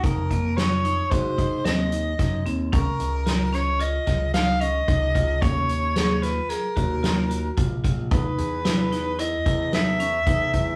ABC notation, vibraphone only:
X:1
M:5/4
L:1/8
Q:1/4=112
K:Abmix
V:1 name="Vibraphone"
E B, F E G E C E E C | [K:Dbdor] D2 =F D F F E D E F | D2 A =F A G F G F F | ^D2 =E D E E D _D ^D E |]